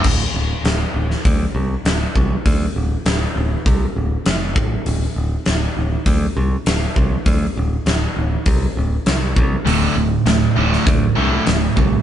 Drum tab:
CC |x---------------|----------------|----------------|----------------|
HH |----o---o---o---|o---o---o---o---|o---o---o---o---|o---o---o---o---|
SD |----o--o----o---|----o-------o---|----o-------o---|----o-------o---|
BD |o-------o-----o-|o-------o-----o-|--------o-----o-|o-------o-----o-|

CC |----------------|
HH |o---o---o---o---|
SD |----o--o----o---|
BD |--------o-----o-|